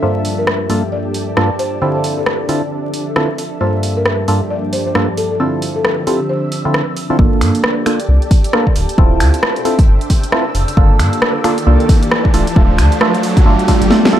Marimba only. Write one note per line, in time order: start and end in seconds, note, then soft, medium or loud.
0.03 0.36 C5 medium
0.38 0.53 A#4 medium
0.92 1.10 D5 medium
1.59 1.80 C5 medium
1.82 1.90 C5 medium
1.95 2.01 C5 medium
2.18 2.62 A4 medium
3.61 3.94 C5 medium
3.97 4.12 A#4 medium
4.50 4.68 D5 medium
4.73 4.81 C5 medium
4.86 4.92 C5 medium
5.17 5.26 A4 medium
5.31 5.37 A4 medium
5.76 5.81 A4 medium
5.85 5.93 A4 medium
6.07 6.25 G4 medium
6.29 6.93 C5 medium